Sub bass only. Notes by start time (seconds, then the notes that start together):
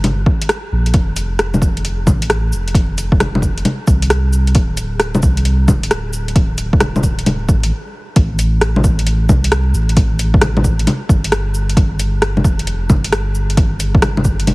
Already playing: G1
0.72 A#1
0.94 F1
2.07 A1
2.52 F1
3.87 C2
4.55 D1
5.23 C2
5.68 D1
7.49 A1
8.16 A1
9.29 C2
9.73 A1
11.09 G1
11.77 G1
12.45 F1
12.90 G1